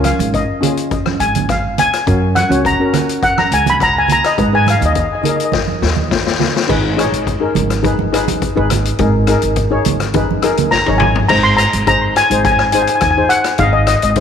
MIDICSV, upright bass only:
0, 0, Header, 1, 2, 480
1, 0, Start_track
1, 0, Tempo, 575816
1, 1727, Time_signature, 4, 2, 24, 8
1, 11838, End_track
2, 0, Start_track
2, 0, Title_t, "Upright bass"
2, 0, Program_c, 0, 32
2, 159, Note_on_c, 0, 32, 92
2, 348, Note_off_c, 0, 32, 0
2, 997, Note_on_c, 0, 32, 82
2, 1557, Note_off_c, 0, 32, 0
2, 1728, Note_on_c, 0, 42, 107
2, 2008, Note_off_c, 0, 42, 0
2, 2085, Note_on_c, 0, 37, 91
2, 2273, Note_off_c, 0, 37, 0
2, 2929, Note_on_c, 0, 37, 88
2, 3486, Note_off_c, 0, 37, 0
2, 3654, Note_on_c, 0, 44, 98
2, 3934, Note_off_c, 0, 44, 0
2, 4014, Note_on_c, 0, 39, 98
2, 4200, Note_off_c, 0, 39, 0
2, 4853, Note_on_c, 0, 39, 87
2, 5410, Note_off_c, 0, 39, 0
2, 5582, Note_on_c, 0, 32, 104
2, 5860, Note_off_c, 0, 32, 0
2, 5937, Note_on_c, 0, 32, 75
2, 6213, Note_off_c, 0, 32, 0
2, 6298, Note_on_c, 0, 32, 84
2, 6949, Note_off_c, 0, 32, 0
2, 7146, Note_on_c, 0, 32, 93
2, 7419, Note_off_c, 0, 32, 0
2, 7498, Note_on_c, 0, 32, 112
2, 7778, Note_off_c, 0, 32, 0
2, 7863, Note_on_c, 0, 32, 83
2, 8137, Note_off_c, 0, 32, 0
2, 8221, Note_on_c, 0, 32, 90
2, 8870, Note_off_c, 0, 32, 0
2, 9071, Note_on_c, 0, 32, 88
2, 9341, Note_off_c, 0, 32, 0
2, 9422, Note_on_c, 0, 32, 99
2, 9700, Note_off_c, 0, 32, 0
2, 9783, Note_on_c, 0, 32, 85
2, 10151, Note_off_c, 0, 32, 0
2, 10258, Note_on_c, 0, 32, 84
2, 10717, Note_off_c, 0, 32, 0
2, 10851, Note_on_c, 0, 39, 94
2, 11036, Note_off_c, 0, 39, 0
2, 11328, Note_on_c, 0, 32, 104
2, 11609, Note_off_c, 0, 32, 0
2, 11697, Note_on_c, 0, 32, 88
2, 11838, Note_off_c, 0, 32, 0
2, 11838, End_track
0, 0, End_of_file